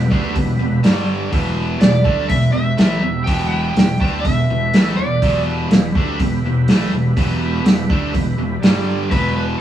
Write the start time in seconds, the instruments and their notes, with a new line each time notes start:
Already playing: tonewheel organ B3 E4 G4 B4
0.10 fingered electric bass D2, distorted electric guitar D3 A3 D4, kick
0.36 fingered electric bass E1, distorted electric guitar E2 B2, kick, open hi-hat
0.59 fingered electric bass E1, distorted electric guitar E2 B2
0.83 fingered electric bass G1, distorted electric guitar G2 D3 G3, tonewheel organ G3 D4 G4 D5, snare, open hi-hat
1.32 fingered electric bass E1, distorted electric guitar E2 B2 E3, tonewheel organ B3 E4 G4 B4, kick, open hi-hat
1.81 fingered electric bass E1, distorted electric guitar E2 B2, electric slide guitar D5, snare, open hi-hat
2.04 fingered electric bass D2, distorted electric guitar D3 A3 D4, kick
2.29 fingered electric bass E1, distorted electric guitar E2 B2, electric slide guitar E5, kick, open hi-hat
2.53 fingered electric bass E1, distorted electric guitar E2 B2, electric slide guitar E5
2.77 fingered electric bass A1, distorted electric guitar A2 E3 A3, snare, open hi-hat
3.01 fingered electric bass E1, distorted electric guitar E2 B2
3.24 fingered electric bass E1, distorted electric guitar E2 B2 E3, electric slide guitar G5, kick, open hi-hat
3.49 electric slide guitar G5
3.76 fingered electric bass E1, distorted electric guitar E2 B2, snare, open hi-hat
4.00 fingered electric bass D2, distorted electric guitar D3 A3 D4, kick
4.21 electric slide guitar E5
4.25 fingered electric bass E1, distorted electric guitar E2 B2, kick, open hi-hat
4.50 fingered electric bass E1, distorted electric guitar E2 B2
4.74 fingered electric bass A1, distorted electric guitar A2 E3 A3, snare, open hi-hat
4.97 fingered electric bass E1, distorted electric guitar E2 B2, electric slide guitar D5
5.19 fingered electric bass E1, distorted electric guitar E2, tonewheel organ E4 G4 B4, kick, open hi-hat
5.23 distorted electric guitar B2 E3
5.71 fingered electric bass E1, distorted electric guitar E2 B2, snare, open hi-hat
5.95 fingered electric bass D2, distorted electric guitar D3 A3 D4, kick
6.19 fingered electric bass E1, distorted electric guitar E2 B2, kick, open hi-hat
6.42 fingered electric bass E1, distorted electric guitar E2 B2
6.67 fingered electric bass A1, distorted electric guitar A2 E3 A3, snare, open hi-hat
6.92 fingered electric bass E1, distorted electric guitar E2 B2
7.17 fingered electric bass E1, distorted electric guitar E2 B2 E3, kick, open hi-hat
7.64 fingered electric bass E1, distorted electric guitar E2 B2, snare, open hi-hat
7.90 fingered electric bass D2, distorted electric guitar D3 A3 D4, kick
8.14 fingered electric bass E1, distorted electric guitar E2 B2, kick, open hi-hat
8.37 fingered electric bass E1, distorted electric guitar E2 B2
8.59 fingered electric bass G1, distorted electric guitar G2, tonewheel organ G3 D4 G4 D5
8.63 distorted electric guitar D3 G3, snare, open hi-hat
9.10 fingered electric bass E1, distorted electric guitar E2 B2 E3, tonewheel organ B3 E4 G4 B4, electric slide guitar B4, kick, open hi-hat
9.36 electric slide guitar B4